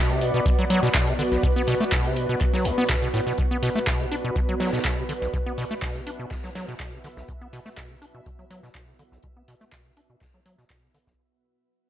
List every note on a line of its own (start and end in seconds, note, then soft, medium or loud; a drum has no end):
0.00 0.11 B2 medium
0.00 11.19 B3 medium
0.00 11.19 F#4 medium
0.00 11.19 B4 medium
0.00 4.89 D5 medium
0.10 0.23 C3 medium
0.10 closed hi-hat soft
0.21 0.32 B2 medium
0.21 closed hi-hat medium
0.21 open hi-hat medium
0.34 0.40 B2 medium
0.34 closed hi-hat soft
0.46 0.50 B2 medium
0.46 kick loud
0.46 closed hi-hat medium
0.59 0.65 F#3 medium
0.59 closed hi-hat soft
0.70 0.81 F#3 loud
0.70 closed hi-hat medium
0.70 open hi-hat loud
0.83 0.89 B2 medium
0.83 snare medium
0.83 closed hi-hat soft
0.94 1.09 B2 medium
0.94 kick loud
0.94 snare loud
0.94 clap loud
0.94 closed hi-hat medium
1.07 1.14 C3 medium
1.07 closed hi-hat soft
1.19 1.23 D3 medium
1.19 closed hi-hat medium
1.19 open hi-hat medium
1.32 1.38 B1 medium
1.32 snare soft
1.32 closed hi-hat soft
1.43 1.48 B2 medium
1.43 kick loud
1.43 closed hi-hat medium
1.56 1.63 B3 medium
1.56 closed hi-hat soft
1.67 1.75 B2 loud
1.67 snare medium
1.67 closed hi-hat medium
1.67 open hi-hat loud
1.81 1.84 A3 loud
1.81 snare soft
1.81 closed hi-hat soft
1.92 2.06 B2 medium
1.92 kick loud
1.92 snare loud
1.92 clap loud
1.92 closed hi-hat medium
1.92 open hi-hat medium
2.05 2.18 C3 medium
2.05 closed hi-hat soft
2.16 2.27 B2 loud
2.16 closed hi-hat medium
2.16 open hi-hat medium
2.29 2.36 B2 medium
2.29 closed hi-hat soft
2.41 2.45 B2 medium
2.41 kick loud
2.41 clap soft
2.41 closed hi-hat medium
2.54 2.67 F#3 medium
2.54 snare medium
2.54 closed hi-hat soft
2.64 2.72 B1 medium
2.64 closed hi-hat medium
2.64 open hi-hat loud
2.78 2.84 B3 medium
2.78 snare soft
2.78 closed hi-hat soft
2.89 2.97 B2 medium
2.89 kick loud
2.89 snare loud
2.89 clap loud
2.89 closed hi-hat medium
3.02 3.09 B2 medium
3.02 closed hi-hat soft
3.14 3.21 A2 medium
3.14 snare soft
3.14 closed hi-hat medium
3.14 open hi-hat medium
3.26 3.33 B2 medium
3.26 snare soft
3.26 closed hi-hat soft
3.38 3.43 B2 medium
3.38 kick loud
3.38 closed hi-hat medium
3.51 3.58 B3 medium
3.62 3.70 B2 loud
3.62 snare soft
3.62 closed hi-hat medium
3.62 open hi-hat loud
3.76 3.79 A3 loud
3.76 snare soft
3.87 4.02 B2 medium
3.87 kick loud
3.87 snare loud
3.87 clap loud
3.87 closed hi-hat medium
4.00 4.06 C3 medium
4.12 4.16 D4 medium
4.12 closed hi-hat medium
4.12 open hi-hat medium
4.24 4.31 B2 medium
4.36 4.40 B2 medium
4.36 kick loud
4.36 closed hi-hat medium
4.48 4.55 F#3 medium
4.48 closed hi-hat soft
4.60 4.71 F#3 loud
4.60 snare medium
4.60 closed hi-hat medium
4.60 open hi-hat loud
4.67 snare medium
4.67 closed hi-hat medium
4.73 4.79 B2 medium
4.73 11.19 E5 medium
4.73 snare medium
4.73 closed hi-hat medium
4.78 snare medium
4.78 closed hi-hat medium
4.84 4.99 B2 medium
4.84 kick loud
4.84 snare loud
4.84 clap loud
4.84 closed hi-hat medium
4.97 5.04 C3 medium
5.09 5.13 D3 medium
5.09 closed hi-hat medium
5.09 open hi-hat medium
5.21 5.28 B1 medium
5.21 snare soft
5.34 5.38 B2 medium
5.34 kick loud
5.34 closed hi-hat medium
5.46 5.53 B3 medium
5.57 5.65 B2 loud
5.57 snare soft
5.57 closed hi-hat medium
5.57 open hi-hat medium
5.71 5.75 A3 loud
5.71 snare soft
5.82 5.97 B2 medium
5.82 kick loud
5.82 snare loud
5.82 clap loud
5.82 open hi-hat medium
5.95 6.02 C3 medium
6.07 6.11 D4 medium
6.07 closed hi-hat medium
6.07 open hi-hat medium
6.19 6.26 B2 medium
6.31 6.35 B2 medium
6.31 kick loud
6.31 snare medium
6.31 clap soft
6.31 closed hi-hat medium
6.44 6.50 F#3 medium
6.44 snare medium
6.55 6.66 F#3 loud
6.55 snare loud
6.55 closed hi-hat medium
6.55 open hi-hat medium
6.68 6.75 B2 medium
6.68 snare soft
6.80 6.94 B2 medium
6.80 kick loud
6.80 snare loud
6.80 clap loud
6.80 closed hi-hat medium
6.93 6.99 C3 medium
7.04 7.08 D3 medium
7.04 snare soft
7.04 closed hi-hat medium
7.04 open hi-hat medium
7.17 7.23 B1 medium
7.17 snare soft
7.28 7.33 B2 medium
7.28 kick loud
7.28 closed hi-hat medium
7.41 7.48 B3 medium
7.53 7.60 B2 loud
7.53 snare soft
7.53 closed hi-hat medium
7.53 open hi-hat medium
7.65 7.70 A3 loud
7.65 snare soft
7.77 7.92 B2 medium
7.77 kick loud
7.77 snare loud
7.77 clap loud
7.77 closed hi-hat medium
7.90 7.97 C3 medium
8.02 8.06 D4 medium
8.02 closed hi-hat medium
8.02 open hi-hat medium
8.15 8.21 B2 medium
8.26 8.30 B2 medium
8.26 kick loud
8.26 closed hi-hat medium
8.39 8.45 F#3 medium
8.39 closed hi-hat soft
8.51 8.61 F#3 loud
8.51 closed hi-hat medium
8.51 open hi-hat medium
8.63 8.70 B2 medium
8.63 snare soft
8.75 8.89 B2 medium
8.75 kick loud
8.75 snare loud
8.75 clap loud
8.75 closed hi-hat medium
8.88 8.94 C3 medium
8.99 9.04 D3 medium
8.99 closed hi-hat medium
8.99 open hi-hat medium
9.12 9.18 B1 medium
9.12 snare soft
9.23 9.28 B2 medium
9.23 kick loud
9.23 closed hi-hat medium
9.37 9.43 B3 medium
9.48 9.55 B2 loud
9.48 snare soft
9.48 closed hi-hat medium
9.48 open hi-hat medium
9.60 9.65 A3 loud
9.60 snare soft
9.72 9.87 B2 medium
9.72 kick loud
9.72 snare loud
9.72 clap loud
9.72 open hi-hat medium
9.85 9.92 C3 medium
9.97 10.01 D4 medium
9.97 closed hi-hat medium
9.97 open hi-hat medium
10.10 10.16 B2 medium
10.21 10.26 B2 medium
10.21 kick loud
10.21 snare loud
10.21 clap soft
10.21 closed hi-hat medium
10.34 10.40 F#3 medium
10.46 10.56 F#3 loud
10.46 closed hi-hat medium
10.46 open hi-hat medium
10.58 10.65 B2 loud
10.58 snare soft
10.69 10.85 B2 medium
10.69 kick loud
10.69 snare loud
10.69 clap loud
10.69 closed hi-hat medium
10.83 10.89 C3 medium
10.94 10.99 D3 medium
10.94 snare soft
10.94 closed hi-hat medium
10.94 open hi-hat medium
11.07 11.14 B1 medium
11.07 kick medium
11.07 snare soft